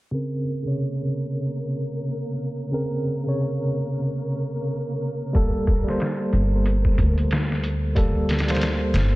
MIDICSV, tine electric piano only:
0, 0, Header, 1, 2, 480
1, 0, Start_track
1, 0, Key_signature, -5, "minor"
1, 0, Tempo, 652174
1, 93, Time_signature, 4, 2, 24, 8
1, 6739, End_track
2, 0, Start_track
2, 0, Title_t, "Tine electric piano"
2, 0, Program_c, 0, 4
2, 83, Note_on_c, 0, 49, 70
2, 95, Note_on_c, 0, 60, 64
2, 104, Note_on_c, 0, 70, 75
2, 235, Control_c, 0, 64, 127
2, 437, Note_off_c, 0, 49, 0
2, 443, Note_off_c, 0, 60, 0
2, 447, Note_off_c, 0, 70, 0
2, 457, Note_on_c, 0, 49, 67
2, 478, Note_on_c, 0, 48, 58
2, 496, Note_on_c, 0, 73, 70
2, 1981, Note_off_c, 0, 49, 0
2, 1991, Note_off_c, 0, 48, 0
2, 2000, Note_off_c, 0, 73, 0
2, 2000, Note_on_c, 0, 49, 68
2, 2009, Note_on_c, 0, 60, 62
2, 2018, Note_on_c, 0, 70, 77
2, 2355, Note_off_c, 0, 49, 0
2, 2360, Note_off_c, 0, 60, 0
2, 2364, Note_off_c, 0, 70, 0
2, 2378, Note_on_c, 0, 49, 64
2, 2399, Note_on_c, 0, 48, 56
2, 2417, Note_on_c, 0, 73, 75
2, 3901, Note_off_c, 0, 49, 0
2, 3912, Note_off_c, 0, 48, 0
2, 3921, Note_off_c, 0, 73, 0
2, 3924, Note_on_c, 0, 55, 75
2, 3934, Note_on_c, 0, 58, 67
2, 3942, Control_c, 0, 64, 0
2, 3945, Note_on_c, 0, 69, 84
2, 4085, Control_c, 0, 64, 127
2, 4277, Note_off_c, 0, 55, 0
2, 4282, Note_off_c, 0, 58, 0
2, 4288, Note_off_c, 0, 69, 0
2, 4297, Note_on_c, 0, 55, 69
2, 4320, Note_on_c, 0, 58, 61
2, 4338, Note_on_c, 0, 72, 73
2, 5821, Note_off_c, 0, 55, 0
2, 5832, Note_off_c, 0, 58, 0
2, 5841, Note_off_c, 0, 72, 0
2, 5852, Note_on_c, 0, 55, 76
2, 5861, Note_on_c, 0, 58, 70
2, 5871, Note_on_c, 0, 69, 86
2, 6201, Note_off_c, 0, 55, 0
2, 6206, Note_off_c, 0, 58, 0
2, 6211, Note_off_c, 0, 69, 0
2, 6222, Note_on_c, 0, 55, 71
2, 6241, Note_on_c, 0, 58, 63
2, 6262, Note_on_c, 0, 72, 76
2, 6739, Note_off_c, 0, 55, 0
2, 6739, Note_off_c, 0, 58, 0
2, 6739, Note_off_c, 0, 72, 0
2, 6739, End_track
0, 0, End_of_file